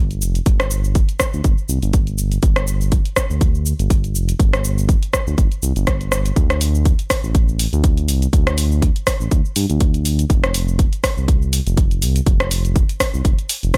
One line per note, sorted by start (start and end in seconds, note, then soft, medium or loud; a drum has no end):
0.00 0.23 G1 medium
0.11 closed hi-hat soft
0.11 shaker soft
0.21 0.40 F1 loud
0.21 shaker loud
0.35 closed hi-hat soft
0.35 shaker soft
0.46 1.03 G1 medium
0.46 kick loud
0.46 closed hi-hat medium
0.46 shaker medium
0.60 cross-stick medium
0.60 closed hi-hat soft
0.60 shaker soft
0.71 shaker loud
0.84 shaker soft
0.95 kick loud
0.95 closed hi-hat medium
0.95 shaker medium
1.09 closed hi-hat soft
1.09 shaker soft
1.20 kick medium
1.20 cross-stick medium
1.20 shaker loud
1.33 1.41 D2 medium
1.33 shaker soft
1.44 1.54 G1 medium
1.44 kick loud
1.44 closed hi-hat medium
1.44 shaker medium
1.58 shaker soft
1.69 1.79 C2 medium
1.69 shaker loud
1.83 2.38 G1 medium
1.83 closed hi-hat soft
1.83 shaker soft
1.93 kick loud
1.93 closed hi-hat medium
1.93 shaker medium
2.07 closed hi-hat soft
2.07 shaker soft
2.18 shaker medium
2.32 closed hi-hat soft
2.32 shaker soft
2.43 3.00 G1 loud
2.43 kick loud
2.43 closed hi-hat medium
2.43 shaker medium
2.56 cross-stick medium
2.56 closed hi-hat soft
2.56 shaker soft
2.67 shaker loud
2.81 shaker soft
2.92 kick loud
2.92 closed hi-hat medium
2.92 shaker medium
3.05 closed hi-hat soft
3.05 shaker soft
3.16 kick medium
3.16 cross-stick medium
3.16 shaker loud
3.30 3.73 D2 medium
3.30 shaker soft
3.41 kick loud
3.41 closed hi-hat medium
3.41 shaker medium
3.55 shaker soft
3.66 shaker loud
3.79 4.16 G1 medium
3.79 closed hi-hat soft
3.79 shaker soft
3.90 kick loud
3.90 closed hi-hat medium
3.90 shaker medium
4.04 closed hi-hat soft
4.04 shaker soft
4.15 4.33 F1 loud
4.15 shaker loud
4.29 closed hi-hat soft
4.29 shaker soft
4.39 4.96 G1 loud
4.39 kick loud
4.39 closed hi-hat medium
4.39 shaker medium
4.53 cross-stick medium
4.53 closed hi-hat soft
4.53 shaker soft
4.64 shaker loud
4.78 shaker soft
4.89 kick loud
4.89 closed hi-hat medium
4.89 shaker medium
5.03 closed hi-hat soft
5.03 shaker soft
5.13 kick medium
5.13 cross-stick medium
5.13 shaker medium
5.27 5.35 D2 medium
5.27 shaker soft
5.38 5.48 G1 medium
5.38 kick loud
5.38 closed hi-hat medium
5.38 shaker medium
5.52 closed hi-hat soft
5.52 shaker soft
5.63 5.72 C2 medium
5.63 shaker loud
5.76 6.31 G1 medium
5.76 closed hi-hat soft
5.76 shaker soft
5.87 kick loud
5.87 cross-stick medium
5.87 closed hi-hat medium
5.87 shaker soft
6.01 closed hi-hat soft
6.01 shaker soft
6.12 cross-stick medium
6.12 shaker loud
6.26 closed hi-hat soft
6.26 shaker soft
6.36 6.93 D2 loud
6.36 kick loud
6.36 closed hi-hat medium
6.36 shaker medium
6.50 cross-stick medium
6.50 closed hi-hat soft
6.50 shaker soft
6.61 open hi-hat medium
6.61 shaker medium
6.75 shaker soft
6.85 kick loud
6.85 closed hi-hat medium
6.85 shaker soft
6.99 closed hi-hat soft
6.99 shaker soft
7.10 kick medium
7.10 cross-stick medium
7.10 open hi-hat medium
7.10 shaker medium
7.24 7.67 A1 medium
7.24 shaker soft
7.35 kick loud
7.35 closed hi-hat medium
7.35 shaker medium
7.49 shaker soft
7.59 open hi-hat medium
7.59 shaker medium
7.73 8.10 D2 medium
7.73 closed hi-hat soft
7.73 shaker soft
7.84 kick loud
7.84 closed hi-hat medium
7.84 shaker medium
7.97 closed hi-hat soft
7.97 shaker soft
8.08 8.27 C2 loud
8.08 open hi-hat medium
8.08 shaker medium
8.22 closed hi-hat soft
8.22 shaker soft
8.33 8.90 D2 loud
8.33 kick loud
8.33 closed hi-hat medium
8.33 shaker soft
8.47 cross-stick medium
8.47 closed hi-hat soft
8.47 shaker soft
8.58 open hi-hat medium
8.58 shaker medium
8.72 shaker soft
8.82 kick loud
8.82 closed hi-hat medium
8.82 shaker soft
8.96 closed hi-hat soft
8.96 shaker soft
9.07 kick medium
9.07 cross-stick medium
9.07 open hi-hat medium
9.07 shaker medium
9.20 9.28 A1 medium
9.20 shaker soft
9.31 9.41 D2 medium
9.31 kick loud
9.31 closed hi-hat medium
9.31 shaker medium
9.45 shaker soft
9.56 9.66 G2 medium
9.56 open hi-hat medium
9.56 shaker medium
9.70 10.25 D2 medium
9.70 closed hi-hat soft
9.70 shaker soft
9.80 kick loud
9.80 closed hi-hat medium
9.80 shaker soft
9.94 closed hi-hat soft
9.94 shaker soft
10.05 open hi-hat medium
10.05 shaker medium
10.19 closed hi-hat soft
10.19 shaker soft
10.30 10.87 F1 loud
10.30 kick loud
10.30 closed hi-hat medium
10.30 shaker soft
10.44 cross-stick medium
10.44 closed hi-hat soft
10.44 shaker soft
10.54 open hi-hat medium
10.54 shaker medium
10.68 shaker soft
10.79 kick loud
10.79 closed hi-hat medium
10.79 shaker soft
10.93 closed hi-hat soft
10.93 shaker soft
11.04 kick medium
11.04 cross-stick medium
11.04 open hi-hat medium
11.04 shaker medium
11.17 11.60 C2 medium
11.17 shaker soft
11.28 kick loud
11.28 closed hi-hat medium
11.28 shaker soft
11.42 shaker soft
11.53 open hi-hat loud
11.53 shaker medium
11.66 12.03 F1 medium
11.66 closed hi-hat soft
11.66 shaker soft
11.77 kick loud
11.77 closed hi-hat medium
11.77 shaker soft
11.91 closed hi-hat soft
11.91 shaker soft
12.02 12.20 C2 loud
12.02 open hi-hat medium
12.02 shaker medium
12.16 closed hi-hat soft
12.16 shaker soft
12.27 12.83 F1 loud
12.27 kick loud
12.27 closed hi-hat medium
12.27 shaker soft
12.40 cross-stick medium
12.40 closed hi-hat soft
12.40 shaker soft
12.51 open hi-hat medium
12.51 shaker medium
12.65 closed hi-hat soft
12.65 shaker soft
12.76 kick loud
12.76 closed hi-hat medium
12.76 shaker soft
12.89 closed hi-hat soft
12.89 shaker soft
13.00 kick medium
13.00 cross-stick medium
13.00 open hi-hat medium
13.00 shaker medium
13.14 13.22 C2 medium
13.14 shaker soft
13.25 13.35 F1 medium
13.25 kick loud
13.25 closed hi-hat medium
13.25 shaker medium
13.39 closed hi-hat soft
13.39 shaker soft
13.49 open hi-hat loud
13.49 shaker medium
13.63 13.78 F1 medium
13.63 closed hi-hat soft
13.63 shaker soft
13.74 kick loud
13.74 cross-stick medium
13.74 closed hi-hat medium
13.74 shaker soft